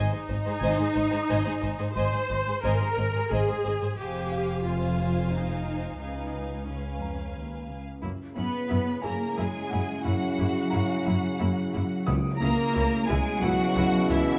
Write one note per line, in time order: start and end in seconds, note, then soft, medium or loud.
0.00 1.92 D#4 loud
0.00 0.11 C5 medium
0.00 0.10 D#5 medium
0.10 0.18 G#2 soft
0.10 0.19 G#4 soft
0.10 0.17 C5 soft
0.10 0.19 C5 medium
0.27 0.35 G#1 medium
0.27 0.36 G#2 medium
0.27 0.35 C5 soft
0.27 0.34 D#5 soft
0.43 0.53 G#2 medium
0.43 0.52 G#4 medium
0.43 0.50 C5 medium
0.43 0.52 C5 medium
0.58 0.68 G#1 medium
0.58 0.75 G#5 medium
0.62 0.69 G#2 medium
0.62 0.78 C5 medium
0.62 0.78 D#5 medium
0.76 0.86 G#2 medium
0.76 0.86 G#4 medium
0.76 0.83 C5 soft
0.76 0.86 C5 soft
0.93 1.03 G#1 medium
0.93 1.02 G#2 medium
0.93 1.02 C5 medium
0.93 1.00 D#5 medium
1.11 1.19 G#2 medium
1.11 1.18 G#4 medium
1.11 1.18 C5 soft
1.11 1.19 C5 medium
1.27 1.37 G#1 medium
1.27 1.36 G#2 medium
1.27 1.44 C5 medium
1.27 1.45 D#5 medium
1.27 1.44 G#5 medium
1.44 1.53 G#2 soft
1.44 1.53 G#4 medium
1.44 1.51 C5 medium
1.44 1.52 C5 medium
1.60 1.70 G#1 medium
1.60 1.70 G#2 medium
1.60 1.70 C5 medium
1.60 1.68 D#5 medium
1.60 3.60 G#5 soft
1.78 1.86 G#2 medium
1.78 1.87 G#4 medium
1.78 1.85 C5 medium
1.78 1.86 C5 medium
1.96 2.04 G#1 medium
1.96 2.03 G#2 medium
1.96 2.62 C5 medium
1.96 2.12 C5 medium
1.96 2.12 D#5 medium
1.96 2.12 G#5 medium
2.13 2.20 G#2 medium
2.13 2.20 G#4 medium
2.13 2.20 C5 soft
2.13 2.20 C5 medium
2.29 2.38 G#1 medium
2.29 2.36 G#2 medium
2.29 2.37 C5 soft
2.29 2.38 D#5 soft
2.46 2.54 G#2 medium
2.46 2.54 G#4 medium
2.46 2.53 C5 medium
2.46 2.54 C5 medium
2.62 2.71 G#1 medium
2.62 2.71 G#2 medium
2.62 3.30 A#4 medium
2.62 2.79 C5 medium
2.62 2.80 D#5 medium
2.62 2.79 G#5 medium
2.80 2.88 G#2 medium
2.80 2.88 G#4 medium
2.80 2.87 C5 soft
2.80 2.88 C5 soft
2.97 3.05 G#1 medium
2.97 3.04 G#2 soft
2.97 3.05 C5 medium
2.97 3.05 D#5 soft
3.14 3.21 G#2 medium
3.14 3.22 G#4 soft
3.14 3.22 C5 soft
3.14 3.23 C5 soft
3.30 3.39 G#1 medium
3.30 3.38 G#2 medium
3.30 3.98 G#4 medium
3.30 3.47 C5 medium
3.30 3.47 D#5 medium
3.30 3.47 G#5 medium
3.48 3.55 G#2 soft
3.48 3.55 G#4 medium
3.48 3.55 C5 medium
3.48 3.56 C5 medium
3.64 3.72 G#1 medium
3.64 3.71 G#2 soft
3.64 3.72 C5 medium
3.64 3.74 D#5 medium
3.81 3.88 G#2 soft
3.81 3.89 G#4 medium
3.81 3.88 C5 medium
3.81 3.89 C5 medium
3.98 5.97 F1 medium
3.98 5.97 F2 medium
3.98 4.65 G4 medium
3.98 4.63 C5 soft
3.98 4.63 F5 soft
3.98 4.63 G#5 medium
4.32 6.30 F5 soft
4.66 5.34 F4 medium
4.66 5.99 C5 soft
4.66 5.99 F5 medium
4.66 5.98 G#5 medium
5.33 5.99 D#4 medium
6.00 6.62 C#2 soft
6.00 7.83 C#2 soft
6.00 6.67 D#4 soft
6.00 6.68 B4 soft
6.00 6.68 F5 soft
6.00 6.67 G#5 soft
6.67 7.00 C#2 soft
6.67 7.35 C#4 soft
6.67 7.82 B4 soft
6.67 7.82 F5 soft
6.67 7.81 G#5 soft
7.01 7.36 F2 soft
7.01 7.99 A#5 soft
7.35 7.69 D#2 soft
7.69 8.03 C#2 soft
8.02 8.10 F#2 medium
8.02 12.04 C#3 medium
8.02 8.11 A#3 soft
8.02 12.03 C#4 medium
8.02 12.04 C#4 medium
8.02 12.03 E4 medium
8.02 8.11 E4 soft
8.35 8.44 F#2 medium
8.35 9.00 B3 medium
8.35 8.43 C#4 soft
8.35 8.44 E4 soft
8.35 9.01 B4 medium
8.35 9.00 B5 medium
8.69 8.78 F#2 medium
8.69 8.77 C#4 soft
8.69 8.77 E4 soft
9.02 9.12 F#2 medium
9.02 9.10 A#3 medium
9.02 9.38 A#3 medium
9.02 9.11 E4 medium
9.02 11.02 G#4 soft
9.02 9.39 A#4 medium
9.02 11.01 G#5 medium
9.02 9.38 A#5 medium
9.36 9.46 F#2 medium
9.36 10.05 G#3 medium
9.36 9.45 A#3 medium
9.36 9.46 E4 medium
9.36 10.06 G#4 medium
9.36 10.05 G#5 medium
9.69 9.80 F#2 medium
9.69 9.80 A#3 medium
9.69 9.80 E4 medium
9.69 11.69 F#5 soft
10.04 10.13 F#2 medium
10.04 12.04 F#3 medium
10.04 10.13 A#3 medium
10.04 10.13 E4 medium
10.04 12.04 F#4 medium
10.04 12.03 F#5 medium
10.39 10.47 F#2 medium
10.39 10.47 A#3 soft
10.39 10.47 E4 medium
10.70 10.80 A#3 medium
10.70 10.80 E4 medium
10.70 12.70 A#5 medium
10.74 10.82 F#2 medium
11.06 11.15 F#2 medium
11.06 11.14 A#3 medium
11.06 11.14 E4 medium
11.39 11.49 F#2 medium
11.39 11.48 A#3 medium
11.39 11.47 E4 medium
11.74 11.82 F#2 medium
11.74 11.82 A#3 medium
11.74 11.82 E4 medium
12.06 12.15 C#2 medium
12.06 14.39 B2 medium
12.06 13.05 C#3 medium
12.06 14.39 C#3 medium
12.06 12.15 B3 medium
12.06 14.39 C#4 medium
12.06 12.15 E4 medium
12.06 14.39 E4 medium
12.06 14.39 C#5 medium
12.06 14.05 D#6 medium
12.06 14.32 D7 medium
12.39 12.50 C#2 medium
12.39 13.05 A#3 loud
12.39 12.49 C#4 medium
12.39 12.49 E4 medium
12.39 13.05 A#4 medium
12.39 13.04 A#5 loud
12.74 12.84 C#2 medium
12.74 12.82 C#4 medium
12.74 12.82 E4 medium
13.07 13.18 C#2 medium
13.07 13.43 G#3 medium
13.07 13.16 B3 medium
13.07 13.16 E4 medium
13.07 13.42 G#4 medium
13.07 13.42 G#5 medium
13.42 13.51 C#2 medium
13.42 14.10 F#3 medium
13.42 13.50 B3 medium
13.42 13.51 E4 medium
13.42 14.10 F#4 loud
13.42 14.39 F#4 soft
13.42 14.39 F#5 medium
13.42 14.10 F#5 loud
13.75 13.84 C#2 medium
13.75 13.83 B3 medium
13.75 13.84 E4 medium
14.09 14.18 C#2 medium
14.09 14.39 E3 medium
14.09 14.17 B3 medium
14.09 14.39 E4 medium
14.09 14.17 E4 medium
14.09 14.39 E5 loud
14.32 14.39 C#7 medium